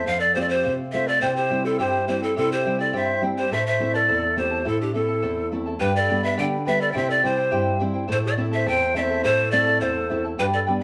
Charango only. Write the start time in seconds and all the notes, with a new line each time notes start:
0.06 A4 C5 F5
0.35 A4 C5 F5
0.49 C5 F5
0.63 A4 C5 F5
0.92 A4 C5 F5
1.07 C5 F5
1.22 E4 G4 C5 E5 G5
1.50 E4 C5 E5 G5
1.64 E4 C5 G5
1.79 E4 G4 C5 E5 G5
2.08 E4 C5 E5 G5
2.22 E4 C5 G5
2.36 E4 G4 C5 E5 G5
2.65 E4 C5 E5 G5
2.79 E4 C5 G5
2.93 E4 G4 C5 E5 G5
3.22 E4 C5 E5 G5
3.37 E4 C5 G5
3.51 E4 A4 C5 E5 A5
3.80 E4 A4 E5 A5
3.94 E4 A4 A5
4.08 E4 A4 C5 E5 A5
4.36 E4 A4 E5 A5
4.51 E4 A4 A5
4.65 E4 A4 C5 E5 A5
4.94 E4 A4 E5 A5
5.08 E4 A4 A5
5.22 E4 A4 C5 E5 A5
5.52 E4 A4 E5 A5
5.66 E4 A4 A5
5.80 G4 B4 D5 G5 B5
6.08 B4 D5 G5 B5
6.23 B4 D5 B5
6.37 G4 B4 D5 G5 B5
6.65 B4 D5 G5 B5
6.79 B4 D5 B5
6.94 E4 G4 C5 E5 G5
7.22 E4 C5 E5 G5
7.37 E4 C5 G5
7.51 E4 G4 C5 E5 G5
7.79 E4 C5 E5 G5
7.94 E4 C5 G5
8.08 E4 A4 C5 E5 A5
8.37 E4 A4 E5 A5
8.51 E4 A4 A5
8.66 E4 A4 C5 E5 A5
8.94 E4 A4 E5 A5
9.09 E4 A4 A5
9.23 E4 A4 C5 E5 A5
9.52 E4 A4 E5 A5
9.66 E4 A4 A5
9.81 E4 A4 C5 E5 A5
10.10 E4 A4 E5 A5
10.25 E4 A4 A5
10.38 G4 B4 D5 G5 B5
10.67 B4 D5 G5 B5